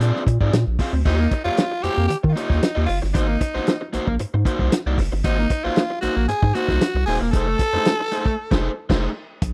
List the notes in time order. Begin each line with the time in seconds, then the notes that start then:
Already playing: D4
0.00 A#2 C4 F4 G#4 D5, closed hi-hat
0.16 snare
0.27 A#2, muted overdriven electric guitar stroke, kick, closed hi-hat
0.41 G#2 C4 F4 G#4 D5, kick
0.53 A#2, muted overdriven electric guitar stroke, snare, closed hi-hat
0.67 A#1
0.79 C4 F4 G#4 F5, kick, snare, open hi-hat
0.93 D2, muted overdriven electric guitar stroke
1.05 D#2 A#3 D#4 F4 G4 C#5, kick, crash
1.19 muted overdriven electric guitar stroke, snare
1.31 muted overdriven electric guitar stroke, kick, closed hi-hat
1.44 F2 A#3 F4 G4 C#5
1.57 snare, closed hi-hat
1.71 muted overdriven electric guitar stroke
1.82 F2 A#3 F4 G4 C#5, closed hi-hat
1.97 F2, muted overdriven electric guitar stroke
2.08 D#3 G4, muted overdriven electric guitar stroke, closed hi-hat
2.23 D#3, muted overdriven electric guitar stroke, kick
2.29 F4
2.33 A#3 D#4 F4 G4, closed hi-hat
2.37 C#5
2.49 D#2 A#3 F4 G4 C#5, kick, snare
2.62 muted overdriven electric guitar stroke, snare, closed hi-hat
2.75 D#2 A#3 F4 G4 D#5
2.86 F#1 F4, muted overdriven electric guitar stroke, open hi-hat
3.02 G1, muted overdriven electric guitar stroke, snare
3.13 G#1 A#3 D#4 F#4 C5, kick, closed hi-hat
3.28 muted overdriven electric guitar stroke
3.40 muted overdriven electric guitar stroke, kick, closed hi-hat
3.55 A#1 A#3 D#4 F#4 C5, snare
3.67 snare, closed hi-hat
3.81 muted overdriven electric guitar stroke
3.93 A#1 A#3 D#4 F#4 C5, closed hi-hat
4.07 A#1, muted overdriven electric guitar stroke, kick
4.19 G#2, muted overdriven electric guitar stroke, closed hi-hat
4.34 G#2, muted overdriven electric guitar stroke
4.45 A#3 D#4 F#4 C5, kick, closed hi-hat
4.59 C2 A#3 D#4 F#4 C5, kick
4.72 muted overdriven electric guitar stroke, snare, closed hi-hat
4.86 C2 A#3 D#4 F#4 D5
4.98 F#1, muted overdriven electric guitar stroke, kick, snare, open hi-hat
5.12 G1, muted overdriven electric guitar stroke
5.24 G#1 A#3 D#4 F#4 C5, kick, closed hi-hat
5.38 muted overdriven electric guitar stroke, snare
5.50 muted overdriven electric guitar stroke, kick, closed hi-hat
5.64 A#1 A#3 D#4 F4 F#4 C5
5.76 snare, closed hi-hat
5.90 muted overdriven electric guitar stroke
6.01 A#1 A#3 D#4 F#4 C5, closed hi-hat
6.16 A#1, muted overdriven electric guitar stroke
6.28 G#2 G#4, muted overdriven electric guitar stroke, closed hi-hat
6.43 G#2, muted overdriven electric guitar stroke, kick
6.54 A#3 D#4 F#4 C5, closed hi-hat
6.68 C2 A#3 D#4 F#4 C5, kick, snare
6.81 muted overdriven electric guitar stroke, snare, closed hi-hat
6.95 C2, muted overdriven electric guitar stroke
7.06 D#1 A#3 D#4 F#4 G#4, open hi-hat
7.10 C5
7.21 E1, muted overdriven electric guitar stroke, snare
7.31 F1 A3 A4, kick, closed hi-hat
7.35 D#4 G#4 C5
7.48 muted overdriven electric guitar stroke
7.59 muted overdriven electric guitar stroke, kick, closed hi-hat
7.73 F2 A3 D#4 G#4 C5, snare
7.85 snare, closed hi-hat
8.00 muted overdriven electric guitar stroke
8.12 A3 D#4 G#4 C5, closed hi-hat
8.26 muted overdriven electric guitar stroke, kick
8.51 F1 A3 D#4 G#4 C5, kick, snare, crash
8.89 F1 A3 D#4 G#4 C5, kick, snare, crash
9.42 A#1, kick, closed hi-hat